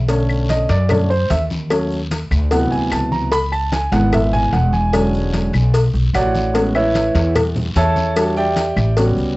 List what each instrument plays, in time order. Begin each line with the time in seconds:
Already playing: upright bass B1
0.08 grand piano D3 A3 C#4, cowbell, high conga, long guiro, maracas
0.29 high conga, claves, maracas
0.49 grand piano D#5, cowbell, high conga, short guiro, maracas
0.69 upright bass F#2, grand piano D5, cowbell, short guiro, maracas
0.89 grand piano D3 A3 C#4, cowbell, high conga, low conga, long guiro, claves, maracas
1.10 grand piano C5, maracas
1.30 upright bass D#2, grand piano E5, cowbell, high conga, short guiro, maracas
1.50 high conga, short guiro, maracas
1.70 grand piano F#3 A3 C#4, cowbell, high conga, long guiro, claves, maracas
1.91 high conga, maracas
2.11 cowbell, high conga, short guiro, maracas
2.31 upright bass D2, high conga, short guiro, claves, maracas
2.51 grand piano C3 E3 F#3 B3 F#5, cowbell, high conga, long guiro, maracas
2.71 upright bass D2, grand piano G#5, high conga, maracas
2.91 upright bass C#2, grand piano A5, cowbell, high conga, short guiro, claves, maracas
3.12 grand piano A#5, high conga, short guiro, maracas
3.32 grand piano B5, cowbell, high conga, long guiro, maracas
3.52 grand piano A5, high conga, claves, maracas
3.72 grand piano G#5, cowbell, high conga, short guiro, maracas
3.91 upright bass G#1, grand piano E3 G#3 B3 F#5, cowbell, short guiro, maracas
4.12 grand piano E5, cowbell, high conga, low conga, long guiro, claves, maracas
4.33 grand piano G#5, high conga, low conga, maracas
4.53 upright bass E1, grand piano F#5, cowbell, high conga, short guiro, maracas
4.73 grand piano G#5, high conga, short guiro, maracas
4.93 grand piano D3 F#3 G#3 C#4, cowbell, long guiro, claves, maracas
5.13 high conga, maracas
5.33 cowbell, high conga, short guiro, maracas
5.53 upright bass B1, short guiro, claves, maracas
5.74 cowbell, high conga, long guiro, maracas
5.94 upright bass B1, high conga, maracas
6.13 upright bass A1, grand piano F#4 C#5 D5 F#5, cowbell, high conga, short guiro, claves, maracas
6.35 high conga, short guiro, maracas
6.54 grand piano G#3 B3 C#4, cowbell, high conga, long guiro, maracas
6.75 grand piano E4 B4 C#5 E5, high conga, claves, maracas
6.95 cowbell, high conga, short guiro, maracas
7.15 upright bass E2, cowbell, short guiro, maracas
7.35 cowbell, high conga, low conga, long guiro, claves, maracas
7.56 high conga, low conga, maracas
7.75 upright bass E2, grand piano A4 C#5 E5 A5, cowbell, high conga, short guiro, maracas
7.96 high conga, short guiro, maracas
8.16 grand piano G3 D4 F#4, cowbell, high conga, long guiro, claves, maracas
8.37 grand piano G4 D5 E5 G5, high conga, maracas
8.56 cowbell, high conga, short guiro, maracas
8.76 upright bass A1, short guiro, claves, maracas
8.97 grand piano G3 B3 C#4 F#4, cowbell, high conga, long guiro, maracas
9.17 upright bass C#2, high conga, maracas